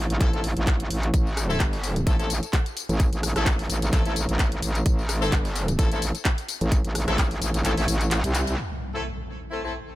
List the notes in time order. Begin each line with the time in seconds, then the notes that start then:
Already playing: A1
0.10 closed hi-hat
0.21 A1 A3 C4 E4 A4, kick, clap, closed hi-hat
0.33 A3 C4 E4 A4, closed hi-hat
0.44 open hi-hat
0.57 A1, closed hi-hat
0.67 kick, clap, closed hi-hat
0.80 closed hi-hat
0.90 A1, open hi-hat
1.03 closed hi-hat
1.14 A1, kick, closed hi-hat, tambourine
1.27 tambourine
1.37 cross-stick, open hi-hat, tambourine
1.50 A3 C4 E4 A4, tambourine
1.60 G1, kick, clap, closed hi-hat, tambourine
1.73 open hi-hat, tambourine
1.84 open hi-hat, tambourine
1.96 closed hi-hat, tambourine
2.07 A1 A3 C4 E4 A4, kick, closed hi-hat, tambourine
2.19 A3 C4 E4 A4, closed hi-hat, tambourine
2.30 open hi-hat, tambourine
2.43 closed hi-hat, tambourine
2.53 kick, clap, closed hi-hat, tambourine
2.66 closed hi-hat, tambourine
2.77 open hi-hat, tambourine
2.89 A1, closed hi-hat, tambourine
3.00 kick, closed hi-hat, tambourine
3.12 A1, closed hi-hat, tambourine
3.23 cross-stick, open hi-hat, tambourine
3.36 A1 A3 C4 E4 A4, cross-stick, closed hi-hat, tambourine
3.46 kick, clap, closed hi-hat, tambourine
3.59 open hi-hat, tambourine
3.70 A1, open hi-hat, tambourine
3.82 closed hi-hat, tambourine
3.93 A1 A3 C4 E4 A4, kick, clap, closed hi-hat, tambourine
4.05 A1 A3 C4 E4 A4, closed hi-hat, tambourine
4.16 open hi-hat, tambourine
4.29 A1, closed hi-hat, tambourine
4.39 kick, clap, closed hi-hat, tambourine
4.52 closed hi-hat, tambourine
4.62 A1, open hi-hat, tambourine
4.75 closed hi-hat, tambourine
4.86 A1, kick, closed hi-hat, tambourine
4.99 tambourine
5.09 cross-stick, open hi-hat, tambourine
5.22 A3 C4 E4 A4, tambourine
5.32 G1, kick, clap, closed hi-hat, tambourine
5.45 open hi-hat, tambourine
5.56 open hi-hat, tambourine
5.68 closed hi-hat, tambourine
5.79 A1 A3 C4 E4 A4, kick, closed hi-hat, tambourine
5.92 A3 C4 E4 A4, closed hi-hat, tambourine
6.02 open hi-hat, tambourine
6.15 closed hi-hat, tambourine
6.25 kick, clap, closed hi-hat, tambourine
6.38 closed hi-hat, tambourine
6.49 open hi-hat, tambourine
6.61 A1, closed hi-hat, tambourine
6.72 kick, closed hi-hat, tambourine
6.85 A1, closed hi-hat, tambourine
6.95 cross-stick, open hi-hat, tambourine
7.08 A1 A3 C4 E4 A4, cross-stick, closed hi-hat, tambourine
7.18 kick, clap, closed hi-hat, tambourine
7.31 open hi-hat, tambourine
7.42 A1, open hi-hat, tambourine
7.54 closed hi-hat, tambourine
7.65 A1 A3 C4 E4 A4, clap, closed hi-hat, tambourine
7.77 A1 A3 C4 E4 A4, open hi-hat, tambourine
7.88 A1, open hi-hat, tambourine
8.01 closed hi-hat, tambourine
8.11 clap, closed hi-hat, tambourine
8.24 C2, closed hi-hat, tambourine
8.35 clap, open hi-hat, tambourine
8.47 closed hi-hat, tambourine
8.58 C4 E4 A4, impact
8.94 A3 C4 E4 A4, tambourine
9.05 tambourine
9.28 tambourine
9.41 tambourine
9.51 A3 C4 E4 A4
9.64 A3 C4 E4 A4
9.87 tambourine